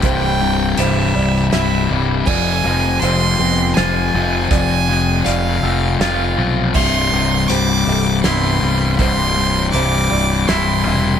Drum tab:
CC |------|x-----|------|x-----|
HH |x-x-x-|--x-x-|x-x-x-|--x-x-|
SD |----o-|----o-|----o-|----o-|
BD |o-----|o-----|o-----|o-----|

CC |------|
HH |x-x-x-|
SD |----o-|
BD |o-----|